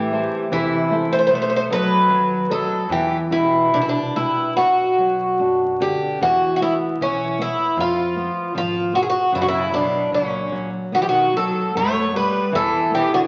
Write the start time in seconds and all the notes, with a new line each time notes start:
Already playing: A1 E3 A3 G4
0.12 E4 A4 C5
0.52 E2 C3 E3 E4
0.91 E4 A4 C5
1.11 A3 C5
1.19 C5
1.27 B3 C5
1.31 B1
1.35 C5
1.42 C5
1.50 C5
1.56 C5
1.70 F#3 A4 B4 D#5
2.09 D#2 F#3
2.49 F#3 A4 B4 D#5
2.89 E2 E3 G4
3.30 B2 E4 G4 B4
3.72 C2 B2 D4
3.82 E4
3.89 D4
4.16 E4 G4 B4
4.56 B1 B2 F#4
4.98 F#3
5.39 F#2 D4
5.80 D3 G4
6.21 E2 E3 F#4
6.56 F#4
6.62 B3 E4
7.01 B1 E3 C#4
7.39 B3 E4
7.77 F2 F3 F4
8.16 B3
8.55 G#1 F3 F4
8.93 B3 F#4
9.03 G#4
9.10 F#4
9.32 F#2 C#3 F#3 E4
9.41 D3 F#4
9.48 C#3 E4
9.72 B2 F#3 D4
10.11 C#2 A#2 F#3 C#4
10.52 F#3
10.92 B1 D#3 B3 F#4
11.00 E3 G4
11.08 D#3 F#4
11.33 F#3 B3
11.37 A4
11.73 F#2 A3 B3 C#5
12.13 G3 B3 B4
12.52 E2 E3 A4
12.91 E3 B3 G4
13.12 D3 F#4